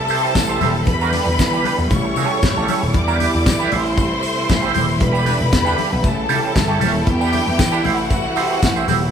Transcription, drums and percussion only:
0.08 open hi-hat medium
0.08 tambourine medium
0.35 kick loud
0.35 snare loud
0.35 closed hi-hat medium
0.35 tambourine loud
0.35 high conga medium
0.61 open hi-hat medium
0.61 tambourine medium
0.61 high conga loud
0.86 kick loud
0.86 closed hi-hat medium
0.86 muted conga medium
1.01 tambourine medium
1.12 open hi-hat medium
1.12 tambourine medium
1.12 muted conga medium
1.27 tambourine soft
1.39 kick loud
1.39 snare loud
1.39 closed hi-hat medium
1.39 tambourine loud
1.39 high conga medium
1.53 tambourine medium
1.64 open hi-hat medium
1.64 muted conga medium
1.79 tambourine soft
1.90 kick loud
1.90 closed hi-hat medium
1.90 tambourine medium
1.90 low conga medium
2.16 open hi-hat medium
2.16 tambourine medium
2.16 low conga medium
2.43 kick loud
2.43 snare loud
2.43 closed hi-hat medium
2.43 tambourine loud
2.43 high conga medium
2.56 tambourine soft
2.68 open hi-hat medium
2.68 tambourine medium
2.68 high conga medium
2.82 tambourine soft
2.94 kick loud
2.94 closed hi-hat medium
2.94 muted conga medium
3.08 tambourine medium
3.20 open hi-hat medium
3.20 tambourine medium
3.20 muted conga medium
3.34 tambourine soft
3.46 kick loud
3.46 snare loud
3.46 closed hi-hat medium
3.46 tambourine loud
3.46 high conga medium
3.60 tambourine soft
3.72 open hi-hat medium
3.72 muted conga medium
3.86 tambourine soft
3.97 kick loud
3.97 closed hi-hat medium
3.97 tambourine medium
3.97 muted conga soft
4.23 open hi-hat medium
4.23 tambourine medium
4.49 kick loud
4.49 snare loud
4.49 closed hi-hat medium
4.49 tambourine medium
4.49 high conga medium
4.63 tambourine soft
4.75 open hi-hat medium
4.75 tambourine medium
4.75 high conga medium
4.88 tambourine soft
5.00 kick loud
5.00 closed hi-hat medium
5.00 muted conga medium
5.15 tambourine medium
5.26 open hi-hat medium
5.26 tambourine medium
5.26 muted conga medium
5.40 tambourine soft
5.53 kick loud
5.53 snare loud
5.53 closed hi-hat medium
5.53 tambourine loud
5.53 high conga medium
5.66 tambourine medium
5.78 open hi-hat medium
5.78 muted conga medium
6.04 kick loud
6.04 closed hi-hat medium
6.04 tambourine medium
6.04 low conga medium
6.29 open hi-hat medium
6.29 tambourine medium
6.29 low conga medium
6.55 kick loud
6.55 snare loud
6.55 closed hi-hat medium
6.55 tambourine medium
6.55 high conga medium
6.81 open hi-hat medium
6.81 tambourine medium
6.81 high conga loud
6.95 tambourine soft
7.07 kick loud
7.07 closed hi-hat medium
7.07 muted conga medium
7.21 tambourine medium
7.32 open hi-hat medium
7.32 tambourine medium
7.32 muted conga medium
7.59 kick loud
7.59 snare loud
7.59 closed hi-hat medium
7.59 tambourine loud
7.59 high conga medium
7.73 tambourine medium
7.84 open hi-hat medium
7.84 muted conga medium
7.98 tambourine soft
8.10 kick loud
8.10 closed hi-hat medium
8.10 tambourine medium
8.10 muted conga soft
8.36 open hi-hat medium
8.36 tambourine medium
8.63 kick loud
8.63 snare loud
8.63 closed hi-hat medium
8.63 tambourine loud
8.63 high conga medium
8.76 tambourine soft
8.88 open hi-hat medium
8.88 tambourine medium
8.88 high conga medium
9.02 tambourine soft

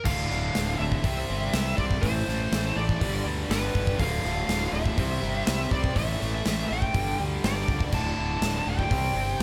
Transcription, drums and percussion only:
0.05 kick loud
0.05 crash loud
0.31 snare soft
0.55 snare loud
0.55 open hi-hat medium
0.92 kick medium
1.04 kick loud
1.04 open hi-hat medium
1.53 snare loud
1.53 open hi-hat medium
1.78 kick medium
1.91 kick medium
2.03 kick loud
2.03 open hi-hat medium
2.28 snare soft
2.52 snare loud
2.52 open hi-hat medium
2.89 kick medium
3.01 kick loud
3.01 open hi-hat medium
3.51 snare loud
3.51 open hi-hat medium
3.75 kick medium
3.87 kick medium
3.99 kick loud
3.99 open hi-hat medium
4.25 snare soft
4.49 snare loud
4.49 open hi-hat medium
4.86 kick medium
4.98 kick medium
4.98 open hi-hat medium
5.47 snare loud
5.47 open hi-hat medium
5.71 kick medium
5.84 kick medium
5.96 kick medium
5.96 open hi-hat medium
6.21 snare soft
6.45 snare medium
6.45 open hi-hat medium
6.82 kick medium
6.94 kick loud
6.94 open hi-hat medium
7.44 snare loud
7.44 open hi-hat medium
7.68 kick medium
7.80 kick medium
7.92 kick loud
7.92 crash loud
8.42 snare loud
8.42 open hi-hat medium
8.79 kick medium
8.91 kick loud
8.91 open hi-hat medium

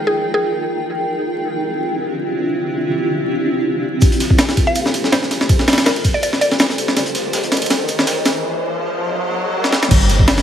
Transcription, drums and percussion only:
4.01 kick loud
4.01 ride medium
4.01 shaker medium
4.12 closed hi-hat soft
4.20 snare soft
4.20 ride medium
4.20 shaker medium
4.30 kick medium
4.38 snare loud
4.38 ride medium
4.38 shaker medium
4.49 snare medium
4.49 closed hi-hat soft
4.57 kick medium
4.57 ride medium
4.75 ride medium
4.75 shaker medium
4.86 snare soft
4.94 ride medium
4.94 shaker medium
5.04 snare soft
5.12 snare loud
5.12 ride medium
5.12 shaker medium
5.23 snare soft
5.31 snare soft
5.31 ride medium
5.31 shaker medium
5.41 snare medium
5.49 kick loud
5.49 ride medium
5.49 shaker medium
5.59 snare soft
5.68 snare medium
5.68 open hi-hat medium
5.68 ride medium
5.73 snare medium
5.73 ride medium
5.78 snare loud
5.78 ride medium
5.85 snare loud
5.85 ride medium
5.85 shaker medium
5.96 ride soft
6.04 kick medium
6.04 ride medium
6.04 shaker medium
6.23 ride medium
6.23 shaker medium
6.32 snare soft
6.41 ride medium
6.41 shaker medium
6.51 snare soft
6.51 closed hi-hat soft
6.59 snare loud
6.59 ride medium
6.59 shaker medium
6.70 snare soft
6.70 closed hi-hat soft
6.78 ride medium
6.78 shaker medium
6.88 snare medium
6.97 snare soft
6.97 ride medium
6.97 shaker medium
7.06 closed hi-hat soft
7.15 snare soft
7.15 ride medium
7.15 shaker medium
7.33 snare loud
7.33 ride medium
7.33 shaker medium
7.43 closed hi-hat soft
7.52 snare medium
7.52 ride medium
7.52 shaker medium
7.57 ride medium
7.62 ride medium
7.66 ride medium
7.66 shaker medium
7.70 snare medium
7.70 ride medium
7.88 ride medium
7.88 shaker medium
7.99 snare medium
7.99 snare soft
8.07 snare loud
8.07 ride medium
8.07 shaker medium
8.25 snare medium
8.25 ride medium
8.25 shaker medium
9.64 snare medium
9.73 snare medium
9.83 snare medium
9.91 kick loud
9.91 crash medium
9.91 ride medium
9.91 shaker medium
10.01 closed hi-hat soft
10.09 snare soft
10.09 ride medium
10.09 shaker medium
10.19 kick medium
10.28 snare loud
10.28 ride medium
10.28 shaker medium
10.37 snare medium
10.37 closed hi-hat soft

